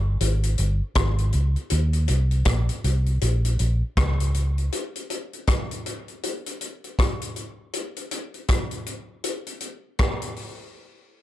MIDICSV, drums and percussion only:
0, 0, Header, 1, 2, 480
1, 0, Start_track
1, 0, Tempo, 752823
1, 1090, Time_signature, 4, 2, 24, 8
1, 7156, End_track
2, 0, Start_track
2, 0, Title_t, "Drums"
2, 131, Note_on_c, 9, 42, 87
2, 194, Note_off_c, 9, 42, 0
2, 277, Note_on_c, 9, 42, 55
2, 340, Note_off_c, 9, 42, 0
2, 368, Note_on_c, 9, 42, 62
2, 432, Note_off_c, 9, 42, 0
2, 606, Note_on_c, 9, 42, 72
2, 610, Note_on_c, 9, 36, 101
2, 611, Note_on_c, 9, 37, 114
2, 670, Note_off_c, 9, 42, 0
2, 674, Note_off_c, 9, 36, 0
2, 675, Note_off_c, 9, 37, 0
2, 755, Note_on_c, 9, 42, 51
2, 819, Note_off_c, 9, 42, 0
2, 845, Note_on_c, 9, 42, 55
2, 909, Note_off_c, 9, 42, 0
2, 994, Note_on_c, 9, 42, 29
2, 1058, Note_off_c, 9, 42, 0
2, 1083, Note_on_c, 9, 42, 81
2, 1147, Note_off_c, 9, 42, 0
2, 1231, Note_on_c, 9, 42, 48
2, 1295, Note_off_c, 9, 42, 0
2, 1325, Note_on_c, 9, 42, 76
2, 1388, Note_off_c, 9, 42, 0
2, 1472, Note_on_c, 9, 42, 34
2, 1536, Note_off_c, 9, 42, 0
2, 1563, Note_on_c, 9, 42, 88
2, 1567, Note_on_c, 9, 37, 98
2, 1568, Note_on_c, 9, 36, 103
2, 1626, Note_off_c, 9, 42, 0
2, 1631, Note_off_c, 9, 37, 0
2, 1632, Note_off_c, 9, 36, 0
2, 1714, Note_on_c, 9, 42, 54
2, 1778, Note_off_c, 9, 42, 0
2, 1812, Note_on_c, 9, 42, 75
2, 1876, Note_off_c, 9, 42, 0
2, 1953, Note_on_c, 9, 42, 32
2, 2017, Note_off_c, 9, 42, 0
2, 2049, Note_on_c, 9, 42, 89
2, 2113, Note_off_c, 9, 42, 0
2, 2198, Note_on_c, 9, 42, 58
2, 2261, Note_off_c, 9, 42, 0
2, 2289, Note_on_c, 9, 42, 66
2, 2353, Note_off_c, 9, 42, 0
2, 2529, Note_on_c, 9, 42, 76
2, 2532, Note_on_c, 9, 36, 104
2, 2534, Note_on_c, 9, 37, 112
2, 2593, Note_off_c, 9, 42, 0
2, 2595, Note_off_c, 9, 36, 0
2, 2597, Note_off_c, 9, 37, 0
2, 2679, Note_on_c, 9, 42, 53
2, 2742, Note_off_c, 9, 42, 0
2, 2770, Note_on_c, 9, 42, 57
2, 2834, Note_off_c, 9, 42, 0
2, 2919, Note_on_c, 9, 42, 32
2, 2983, Note_off_c, 9, 42, 0
2, 3012, Note_on_c, 9, 42, 82
2, 3076, Note_off_c, 9, 42, 0
2, 3159, Note_on_c, 9, 42, 47
2, 3223, Note_off_c, 9, 42, 0
2, 3251, Note_on_c, 9, 42, 71
2, 3315, Note_off_c, 9, 42, 0
2, 3399, Note_on_c, 9, 42, 35
2, 3463, Note_off_c, 9, 42, 0
2, 3489, Note_on_c, 9, 42, 88
2, 3493, Note_on_c, 9, 36, 108
2, 3494, Note_on_c, 9, 37, 113
2, 3553, Note_off_c, 9, 42, 0
2, 3557, Note_off_c, 9, 36, 0
2, 3558, Note_off_c, 9, 37, 0
2, 3641, Note_on_c, 9, 42, 50
2, 3705, Note_off_c, 9, 42, 0
2, 3735, Note_on_c, 9, 42, 72
2, 3799, Note_off_c, 9, 42, 0
2, 3877, Note_on_c, 9, 42, 31
2, 3940, Note_off_c, 9, 42, 0
2, 3975, Note_on_c, 9, 42, 83
2, 4038, Note_off_c, 9, 42, 0
2, 4120, Note_on_c, 9, 42, 58
2, 4184, Note_off_c, 9, 42, 0
2, 4213, Note_on_c, 9, 42, 60
2, 4277, Note_off_c, 9, 42, 0
2, 4361, Note_on_c, 9, 42, 33
2, 4425, Note_off_c, 9, 42, 0
2, 4455, Note_on_c, 9, 36, 101
2, 4455, Note_on_c, 9, 42, 76
2, 4459, Note_on_c, 9, 37, 100
2, 4518, Note_off_c, 9, 42, 0
2, 4519, Note_off_c, 9, 36, 0
2, 4523, Note_off_c, 9, 37, 0
2, 4600, Note_on_c, 9, 42, 54
2, 4664, Note_off_c, 9, 42, 0
2, 4692, Note_on_c, 9, 42, 49
2, 4756, Note_off_c, 9, 42, 0
2, 4931, Note_on_c, 9, 42, 81
2, 4995, Note_off_c, 9, 42, 0
2, 5078, Note_on_c, 9, 42, 51
2, 5142, Note_off_c, 9, 42, 0
2, 5172, Note_on_c, 9, 42, 77
2, 5235, Note_off_c, 9, 42, 0
2, 5318, Note_on_c, 9, 42, 32
2, 5381, Note_off_c, 9, 42, 0
2, 5409, Note_on_c, 9, 42, 95
2, 5413, Note_on_c, 9, 36, 104
2, 5414, Note_on_c, 9, 37, 101
2, 5473, Note_off_c, 9, 42, 0
2, 5477, Note_off_c, 9, 36, 0
2, 5477, Note_off_c, 9, 37, 0
2, 5553, Note_on_c, 9, 42, 50
2, 5617, Note_off_c, 9, 42, 0
2, 5652, Note_on_c, 9, 42, 66
2, 5715, Note_off_c, 9, 42, 0
2, 5890, Note_on_c, 9, 42, 85
2, 5953, Note_off_c, 9, 42, 0
2, 6035, Note_on_c, 9, 42, 54
2, 6099, Note_off_c, 9, 42, 0
2, 6124, Note_on_c, 9, 42, 68
2, 6188, Note_off_c, 9, 42, 0
2, 6367, Note_on_c, 9, 42, 72
2, 6372, Note_on_c, 9, 36, 102
2, 6372, Note_on_c, 9, 37, 106
2, 6431, Note_off_c, 9, 42, 0
2, 6435, Note_off_c, 9, 37, 0
2, 6436, Note_off_c, 9, 36, 0
2, 6514, Note_on_c, 9, 42, 52
2, 6578, Note_off_c, 9, 42, 0
2, 6608, Note_on_c, 9, 46, 38
2, 6671, Note_off_c, 9, 46, 0
2, 7156, End_track
0, 0, End_of_file